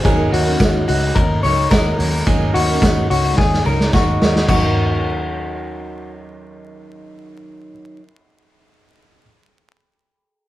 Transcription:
0.03 D#2 D#3 F#3 C#4 D#4 F#4 G#4 A#4 C#5, kick, hi-hat pedal, ride, tambourine
0.32 D#2 D#4 F#4 C#5, open hi-hat
0.46 C#4 D#4 A#4
0.60 D#2 D#4 F#4 C#5, kick, snare, hi-hat pedal, ride, tambourine
0.87 C#2 D#4 F#4 C#5, open hi-hat, tambourine
1.14 D#2 D#4 F#4 A#4 C#5, kick, hi-hat pedal, ride
1.43 C#2 F#3 C#4 D#4 F#4 A#4 C#5, open hi-hat, tambourine
1.69 D#2 F#3 C#4 D#4 F#4 A#4 C#5, kick, snare, hi-hat pedal, ride, tambourine
1.97 D#2 F#3 C#4 D#4 F#4 A#4 C#5, open hi-hat, tambourine
2.26 D#2 D#3 F#3 C#4 D#4 F#4 G#4 A#4 C#5, kick, hi-hat pedal, ride, tambourine
2.53 D#2 D#4 F#4 C#5, open hi-hat, tambourine
2.69 C#4 D#4 A#4
2.81 D#2 D#4 F#4 C#5, kick, snare, hi-hat pedal, ride, tambourine
3.10 C#2 D#4 F#4 C#5, open hi-hat, tambourine
3.37 D#2 D#4 F#4 G#4 C#5, kick, snare, tambourine
3.54 snare
3.64 C#2 F#3 C#4 D#4 F#4 A#4 C#5, tambourine
3.68 A#4
3.80 snare
3.92 D#2 F#3 C#4 D#4 F#4 A#4 D#5, kick, snare, tambourine
4.20 D#2 F#3 C#4 D#4 F#4 A#4 C#5, snare, tambourine
4.36 snare
4.45 D#2 D#3 F#3 D#4 F#4, kick, floor tom, tambourine, crash
4.51 C#4 D#4 A#4 C#5

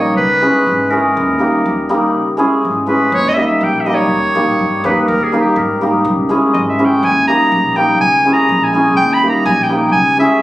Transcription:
Already playing: A#1 G3 A#3 D#4 G4 C#5
0.17 C#2 B4
0.41 G#3 C#4 E4 G#4
0.67 G#1
0.90 G#3 C#4 E4 G#4 A#4
1.17 D#2
1.39 G3 A#3 D#4 G4
1.66 D#2
1.89 G3 A#3 D#4 G4
2.15 C#2
2.37 G#3 C#4 E4 G#4
2.65 G#1
2.86 G#3 C#4 E4 G#4 B4
3.12 D#2 C#5
3.29 D#5
3.34 G3 A#3 D#4 G4 E5
3.39 D#5
3.47 E5
3.61 A#1 G5
3.81 E5
3.86 G3 A#3 D#4 G4 D#5
3.95 C#5
4.11 D#2
4.35 A#2 G3 A#3 D#4 G4
4.59 G2
4.84 D#2 G3 A#3 D#4 G4 B4
5.02 B4
5.07 D#2 A#4
5.24 G#4
5.32 G3 A#3 D#4 G4
5.40 G4
5.56 G#2 A#4
5.81 G3 A#3 D#4 G4
6.05 C#2
6.29 G#3 C#4 E4 G#4
6.53 G#1 D#5
6.69 E5
6.79 G#3 C#4 E4 G#4
6.85 G5
7.03 D#2 G#5
7.27 G3 A#3 D#4 G4 A#5
7.52 A#1
7.76 G3 A#3 D#4 G4 G5
8.00 C#2 G#5
8.25 G#3 C#4 E4 G#4
8.33 A#5
8.49 A#1
8.64 G#5
8.73 G#3 C#4 E4 G#4
8.97 D#2 G5
9.14 B5
9.23 G3 A#3 D#4 G4
9.29 A#5
9.45 A#1 G#5
9.63 G5
9.69 G3 A#3 D#4 G4
9.78 G5
9.92 C#2 G#5
10.17 G#3 C#4 E4 G#4 E5

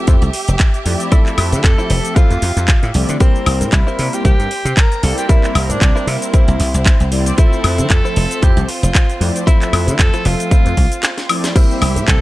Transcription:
Already playing: F3 A3 C4 G4 A4 E5
0.07 F2 E4 F4 A4 C5, kick, closed hi-hat, cabasa
0.22 C2, closed hi-hat, cabasa
0.33 muted clean electric guitar stroke, open hi-hat
0.48 F1, closed hi-hat, cabasa
0.59 kick, clap, closed hi-hat, cabasa
0.74 closed hi-hat, cabasa
0.85 F2 F3 A3 C4 E4 D5, open hi-hat
1.00 closed hi-hat, cabasa
1.11 F3 A3 C4 E4 F4 A4 D5, kick, closed hi-hat, cabasa
1.26 clap, cabasa
1.38 F2, open hi-hat, high woodblock
1.52 D3, muted clean electric guitar stroke, closed hi-hat, cabasa
1.64 F2 A4, muted clean electric guitar stroke, kick, clap, closed hi-hat, cabasa
1.78 E4 F4 A4 C5, cabasa
1.90 F1, open hi-hat
2.05 closed hi-hat, cabasa
2.15 E4 F4 A4 C5, kick, closed hi-hat, cabasa
2.31 F2, closed hi-hat, cabasa
2.42 F2, muted clean electric guitar stroke, open hi-hat
2.57 F2, closed hi-hat, cabasa
2.68 kick, clap, closed hi-hat, cabasa
2.83 A2, closed hi-hat, cabasa
2.94 C2 F3 A3 C4 E4 D5, open hi-hat
3.09 D3, closed hi-hat, cabasa
3.20 A#3 C4 E4 G4 A#4 C5, kick, closed hi-hat, cabasa
3.36 cabasa
3.46 C2, open hi-hat, high woodblock
3.61 A2, muted clean electric guitar stroke, closed hi-hat, cabasa
3.72 C2 E4, muted clean electric guitar stroke, kick, clap, closed hi-hat, cabasa
3.87 E4 G4 A#4 C5, cabasa
3.99 C3, open hi-hat
4.13 G4, closed hi-hat, cabasa
4.25 C2 E4 G4 A#4 C5, kick, closed hi-hat, cabasa
4.39 G2, closed hi-hat, cabasa
4.51 muted clean electric guitar stroke, open hi-hat
4.65 C3, closed hi-hat, cabasa
4.77 A#4, kick, clap, closed hi-hat, cabasa
4.92 closed hi-hat, cabasa
5.03 C2 G3 A#3 C4 E4 A4 D5, open hi-hat
5.18 G4, closed hi-hat, cabasa
5.28 G3 A#3 C4 E4 G4 A#4 D5, kick, closed hi-hat, cabasa
5.44 clap, cabasa
5.55 C2, open hi-hat, high woodblock
5.70 A2 D4, muted clean electric guitar stroke, closed hi-hat, cabasa
5.81 C2, muted clean electric guitar stroke, kick, clap, closed hi-hat, cabasa
5.96 E4 G4 A#4 C5, cabasa
6.07 C3 E4, open hi-hat
6.22 closed hi-hat, cabasa
6.33 E4 G4 A#4 C5, kick, closed hi-hat, cabasa
6.48 C2, closed hi-hat, cabasa
6.60 C2, muted clean electric guitar stroke, open hi-hat
6.74 C2, closed hi-hat, cabasa
6.86 kick, clap, closed hi-hat, cabasa
7.00 C2, closed hi-hat, cabasa
7.11 G3 A#3 C4 E4 D5, open hi-hat
7.26 closed hi-hat, cabasa
7.37 F3 A3 C4 E4 F4 A4 C5, kick, closed hi-hat, cabasa
7.53 cabasa
7.64 F2, open hi-hat, high woodblock
7.78 D3, muted clean electric guitar stroke, closed hi-hat, cabasa
7.90 F2 A4, muted clean electric guitar stroke, kick, clap, closed hi-hat, cabasa
8.05 E4 F4 A4 C5, cabasa
8.16 F1, open hi-hat
8.31 closed hi-hat, cabasa
8.42 F2 E4 F4 G4 A4 C5, kick, closed hi-hat, cabasa
8.57 C2, closed hi-hat, cabasa
8.63 G4
8.69 F4, muted clean electric guitar stroke, open hi-hat
8.83 F1, closed hi-hat, cabasa
8.95 kick, clap, closed hi-hat, cabasa
9.10 closed hi-hat, cabasa
9.20 F2 F3 A3 C4 E4 D5, open hi-hat
9.36 closed hi-hat, cabasa
9.46 F3 A3 C4 E4 F4 A4 C5, kick, closed hi-hat, cabasa
9.62 clap, closed hi-hat, cabasa
9.73 F2, open hi-hat, high woodblock
9.87 D3, muted clean electric guitar stroke, closed hi-hat, cabasa
9.99 F2 A4, muted clean electric guitar stroke, kick, clap, closed hi-hat, cabasa
10.14 E4 F4 A4 C5, closed hi-hat, cabasa
10.25 F1 F4, open hi-hat
10.40 closed hi-hat, cabasa
10.51 E4 F4 A4 C5, kick, closed hi-hat, cabasa
10.66 F2, closed hi-hat, cabasa
10.77 C2, muted clean electric guitar stroke, kick, open hi-hat
10.92 closed hi-hat, cabasa
11.03 snare, clap, closed hi-hat, cabasa
11.18 snare, closed hi-hat, cabasa
11.29 F3 A3 C4 E4 D5, open hi-hat, high woodblock
11.44 snare, closed hi-hat, cabasa
11.55 G3 C4 E4 G4 A#4 C5 E5, kick, closed hi-hat, crash, cabasa
11.71 cabasa
11.81 C2, open hi-hat, low conga, high woodblock
11.96 A2, muted clean electric guitar stroke, closed hi-hat, cabasa
12.08 C2 A4, muted clean electric guitar stroke, kick, clap, closed hi-hat, cabasa

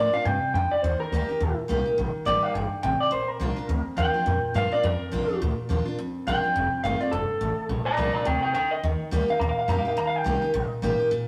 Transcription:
Already playing: A2 A#2 F3 A#3 D4 D5
0.00 F4
0.13 D4 F4 F5, muted upright bass stroke
0.25 G2 C3 G5
0.43 muted upright bass stroke
0.54 F2 D3 G5
0.71 D5, muted upright bass stroke
0.82 D#2 D#3 C5
1.00 A#4, muted upright bass stroke
1.12 D2 G3 A#3 D#4 G4
1.28 D#4 G4, muted upright bass stroke
1.40 D#2 A#2
1.58 muted upright bass stroke
1.68 C2 G3 A#3 D#4 G4
1.85 D#4 G4
1.98 A#1 D#3
2.15 muted upright bass stroke
2.25 A1 G3 A#3 D#4 G4 D5
2.43 F5, muted upright bass stroke
2.54 G1 G2 G5
2.72 muted upright bass stroke
2.83 A1 C3 G5
3.00 D5, muted upright bass stroke
3.11 A#1 A#2 C5
3.28 A#4, muted upright bass stroke
3.40 C2 F3 A#3 D4 F4
3.56 D4 F4, muted upright bass stroke
3.69 D2 F2
3.86 muted upright bass stroke
3.97 D#2 F3 A#3 D4 F4 G5
4.14 D4 F4, muted upright bass stroke
4.26 F2 A#2
4.43 muted upright bass stroke
4.54 G2 F3 A#3 D4 F4 F5
4.72 D4 F4 D5
4.83 F2 A#4
5.01 muted upright bass stroke
5.12 A#1 F3 A#3 D4 F4
5.28 D4 F4, muted upright bass stroke
5.42 D2 A#2
5.58 muted upright bass stroke
5.69 D#2 F3 A#3 D4 F4
5.85 D4 F4, muted upright bass stroke
5.99 D2 F2
6.16 muted upright bass stroke
6.27 A#1 F3 A#3 D4 F4 G5
6.44 D4 F4, muted upright bass stroke
6.56 F1 F2
6.73 muted upright bass stroke
6.84 G1 D#3 A3 C4 F4 F5
7.00 C4 F4 D5, muted upright bass stroke
7.12 F1 G2 A4
7.30 muted upright bass stroke
7.41 A1 A2
7.58 muted upright bass stroke
7.69 A#1 A#2
7.85 D5 A#5, muted upright bass stroke
7.97 C2 F3 A#3 D4 F4 D5 A#5
8.13 D5 A#5, muted upright bass stroke
8.25 D2 C3 A#4 G5
8.42 A#4 G5, muted upright bass stroke
8.54 D3 A#4 G5
8.71 D#5
8.83 D#2 D#3
9.00 muted upright bass stroke
9.11 D2 G3 A#3 D#4 G4
9.28 D#4 G4 F5
9.40 D#2 A#2 A#5
9.49 F5
9.57 F5, muted upright bass stroke
9.68 F2 G3 A#3 D#4 G4 A#5
9.78 F5
9.85 D#4 G4 F5, muted upright bass stroke
9.97 D#2 D#3 A#5
10.07 F5
10.16 G5
10.24 C2 G3 A#3 D#4 G4
10.42 D#4 G4
10.54 A#1 A#2
10.71 muted upright bass stroke
10.82 A1 G3 A#3 D#4 G4
10.99 D#4 G4, muted upright bass stroke
11.11 A#1 A#2

